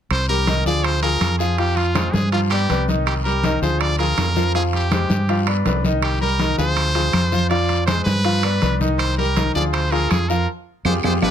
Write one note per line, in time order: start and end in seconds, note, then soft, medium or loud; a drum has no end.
0.11 0.62 C2 medium
0.11 0.29 C5 medium
0.11 high conga soft
0.11 high timbale medium
0.11 long guiro medium
0.11 claves medium
0.29 0.44 G3 medium
0.29 0.45 G4 medium
0.29 0.64 A#4 medium
0.29 0.45 A#4 medium
0.29 high conga soft
0.47 0.63 D#3 medium
0.47 0.63 D#4 medium
0.47 0.63 D#5 medium
0.47 high conga medium
0.47 high timbale medium
0.47 short guiro medium
0.65 1.17 D2 medium
0.65 0.97 F3 medium
0.65 0.97 F4 medium
0.65 0.97 G#4 medium
0.65 0.86 D5 medium
0.65 high conga soft
0.65 short guiro medium
0.84 1.02 C5 medium
0.84 high conga soft
0.84 high timbale medium
0.84 long guiro medium
0.84 claves medium
1.02 1.34 F3 medium
1.02 1.34 F4 medium
1.02 1.34 G#4 medium
1.02 1.37 A#4 medium
1.02 high conga soft
1.02 high timbale medium
1.21 2.08 F2 medium
1.21 high conga medium
1.21 high timbale medium
1.21 short guiro medium
1.21 claves medium
1.39 1.55 F3 medium
1.39 1.55 F4 medium
1.39 1.60 G#4 medium
1.39 1.56 F5 medium
1.39 short guiro medium
1.58 1.89 F3 medium
1.58 1.89 F4 medium
1.58 1.78 G4 medium
1.58 1.89 F5 medium
1.58 high conga soft
1.58 high timbale medium
1.58 long guiro medium
1.76 2.14 F4 medium
1.76 high conga soft
1.76 high timbale medium
1.95 2.26 G#3 medium
1.95 2.26 G#4 medium
1.95 2.27 C5 medium
1.95 high conga medium
1.95 high timbale medium
1.95 short guiro medium
1.95 claves medium
2.13 2.66 G2 medium
2.13 2.31 G#4 medium
2.13 high conga medium
2.13 short guiro medium
2.32 2.48 F3 medium
2.32 2.40 F4 medium
2.32 2.48 F4 medium
2.32 2.48 F5 medium
2.32 high conga soft
2.32 high timbale medium
2.32 long guiro medium
2.50 2.67 B3 medium
2.50 2.85 G4 medium
2.50 2.67 B4 medium
2.50 2.67 D5 medium
2.50 high conga soft
2.50 high timbale medium
2.50 claves medium
2.69 3.56 C2 medium
2.69 2.85 B3 medium
2.69 2.85 B4 medium
2.69 2.85 D5 medium
2.69 high conga medium
2.69 high timbale medium
2.69 short guiro medium
2.88 3.19 D#3 medium
2.88 3.19 D#4 medium
2.88 3.19 D#5 medium
2.88 high conga medium
2.88 short guiro medium
3.06 3.15 G4 medium
3.06 high conga soft
3.06 high timbale medium
3.06 long guiro medium
3.06 claves medium
3.24 3.41 G3 medium
3.24 3.41 G4 medium
3.24 3.59 A#4 medium
3.24 3.41 A#4 medium
3.24 high conga soft
3.43 3.59 D#3 medium
3.43 3.59 D#4 medium
3.43 3.59 D#5 medium
3.43 high conga medium
3.43 high timbale medium
3.43 short guiro medium
3.62 4.14 D2 medium
3.62 3.93 F3 medium
3.62 3.93 F4 medium
3.62 3.93 G#4 medium
3.62 3.81 C5 medium
3.62 high conga soft
3.62 short guiro medium
3.80 3.98 D5 medium
3.80 high conga soft
3.80 high timbale medium
3.80 long guiro medium
3.80 claves medium
3.98 4.30 F3 medium
3.98 4.30 F4 medium
3.98 4.30 G#4 medium
3.98 4.50 A#4 medium
3.98 high conga soft
3.98 high timbale medium
4.18 5.04 F2 medium
4.18 high conga medium
4.18 high timbale medium
4.18 low timbale medium
4.18 short guiro medium
4.18 claves medium
4.36 4.51 F3 medium
4.36 4.52 F4 medium
4.36 4.52 F5 medium
4.36 high conga medium
4.36 short guiro medium
4.55 4.85 F3 medium
4.55 4.85 F4 medium
4.55 4.63 G#4 medium
4.55 4.85 F5 medium
4.55 high conga soft
4.55 high timbale medium
4.55 long guiro medium
4.73 5.44 G4 medium
4.73 high conga soft
4.73 high timbale medium
4.91 5.22 G#3 medium
4.91 5.22 G4 medium
4.91 5.22 C5 medium
4.91 high conga medium
4.91 high timbale medium
4.91 short guiro medium
4.91 claves medium
5.10 5.62 G2 medium
5.10 high conga medium
5.10 short guiro medium
5.29 5.44 F3 medium
5.29 5.44 F4 medium
5.29 5.45 F5 medium
5.29 high conga soft
5.29 high timbale medium
5.29 long guiro medium
5.47 5.62 B3 medium
5.47 5.63 B4 medium
5.47 5.63 D5 medium
5.47 high conga soft
5.47 high timbale medium
5.47 claves medium
5.65 6.53 C2 medium
5.65 5.81 B3 medium
5.65 5.82 B4 medium
5.65 5.82 D5 medium
5.65 high conga medium
5.65 high timbale medium
5.65 low timbale medium
5.65 short guiro medium
5.84 6.15 D#3 medium
5.84 6.15 D#4 medium
5.84 6.15 D#5 medium
5.84 high conga medium
5.84 short guiro medium
6.02 6.20 G4 medium
6.02 high conga soft
6.02 high timbale medium
6.02 long guiro medium
6.02 claves medium
6.21 6.36 G3 medium
6.21 6.37 G4 medium
6.21 6.56 A#4 medium
6.21 6.37 A#4 medium
6.21 high conga soft
6.39 6.55 D#3 medium
6.39 6.55 D#4 medium
6.39 6.55 D#5 medium
6.39 high conga medium
6.39 high timbale medium
6.39 short guiro medium
6.58 7.10 D2 medium
6.58 6.89 F3 medium
6.58 6.89 F4 medium
6.58 6.89 G#4 medium
6.58 7.47 C5 medium
6.58 high conga soft
6.58 short guiro medium
6.77 high conga soft
6.77 high timbale medium
6.77 long guiro medium
6.77 claves medium
6.95 7.26 F3 medium
6.95 7.26 F4 medium
6.95 7.26 G#4 medium
6.95 high conga soft
6.95 high timbale medium
7.13 8.01 F2 medium
7.13 high conga medium
7.13 high timbale medium
7.13 short guiro medium
7.13 claves medium
7.32 7.47 F3 medium
7.32 7.48 F4 medium
7.32 7.48 F5 medium
7.32 high conga medium
7.32 short guiro medium
7.50 7.81 F3 medium
7.50 7.81 F4 medium
7.50 7.85 D5 medium
7.50 7.81 F5 medium
7.50 high conga soft
7.50 high timbale medium
7.50 long guiro medium
7.69 high conga soft
7.69 high timbale medium
7.87 8.18 G#3 medium
7.87 8.19 G#4 medium
7.87 8.04 C5 medium
7.87 8.19 C5 medium
7.87 high conga medium
7.87 high timbale medium
7.87 short guiro medium
7.87 claves medium
8.05 8.58 G2 medium
8.05 8.76 B4 loud
8.05 high conga medium
8.05 short guiro medium
8.25 8.40 F3 medium
8.25 8.40 F4 medium
8.25 8.41 F5 medium
8.25 high conga soft
8.25 high timbale medium
8.25 long guiro medium
8.43 8.59 B3 medium
8.43 8.59 B4 medium
8.43 8.59 D5 medium
8.43 high conga soft
8.43 high timbale medium
8.43 claves medium
8.62 9.49 C2 medium
8.62 8.78 B3 medium
8.62 8.78 B4 medium
8.62 8.78 D5 medium
8.62 high conga medium
8.62 high timbale medium
8.62 short guiro medium
8.81 9.11 D#3 medium
8.81 9.11 D#4 medium
8.81 9.11 D#5 medium
8.81 high conga medium
8.81 short guiro medium
8.98 9.16 C5 medium
8.98 high conga soft
8.98 high timbale medium
8.98 long guiro medium
8.98 claves medium
9.17 9.33 G3 medium
9.17 9.34 G4 medium
9.17 9.52 A#4 medium
9.17 9.34 A#4 medium
9.17 high conga soft
9.36 9.52 D#3 medium
9.36 9.52 D#4 medium
9.36 9.52 D#5 medium
9.36 high conga loud
9.36 high timbale medium
9.36 short guiro medium
9.55 10.07 D2 medium
9.55 9.86 F3 medium
9.55 9.86 F4 medium
9.55 9.86 G#4 medium
9.55 9.63 D5 medium
9.55 high conga soft
9.55 short guiro medium
9.73 9.93 C5 medium
9.73 high conga soft
9.73 high timbale medium
9.73 long guiro medium
9.73 claves medium
9.91 10.23 F3 medium
9.91 10.23 F4 medium
9.91 10.23 G#4 medium
9.91 10.12 A#4 medium
9.91 high conga soft
9.91 high timbale medium
10.10 10.46 F2 medium
10.10 10.31 G#4 medium
10.10 high conga medium
10.10 high timbale medium
10.10 short guiro medium
10.10 claves medium
10.29 10.45 F3 medium
10.29 10.45 F4 medium
10.29 10.48 A#4 medium
10.29 10.45 F5 medium
10.29 short guiro medium
10.85 10.99 F2 medium
10.85 10.97 F4 medium
10.85 10.98 G4 medium
10.85 10.98 G#4 medium
10.85 10.94 C5 medium
10.85 high conga loud
10.85 high timbale medium
10.85 long guiro medium
10.85 claves medium
11.04 11.18 F2 medium
11.04 11.16 F4 medium
11.04 11.16 G4 medium
11.04 11.16 G#4 medium
11.04 11.14 C5 medium
11.04 high conga medium
11.04 high timbale medium
11.04 long guiro medium
11.04 claves medium
11.22 11.31 G1 medium
11.22 11.31 D4 medium
11.22 11.31 F4 medium
11.22 11.31 G4 medium
11.22 11.31 B4 medium
11.22 high conga medium
11.22 high timbale medium
11.22 long guiro medium
11.22 claves medium